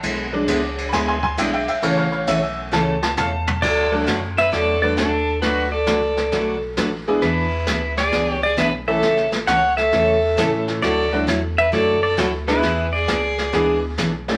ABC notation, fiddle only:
X:1
M:4/4
L:1/8
Q:"Swing" 1/4=133
K:D
V:1 name="Fiddle"
z8 | z8 | A2 z B A A D2 | F A4 z3 |
E3 ^G2 G B A- | A z c A4 z | A2 z B A A E E- | E ^G4 z3 |]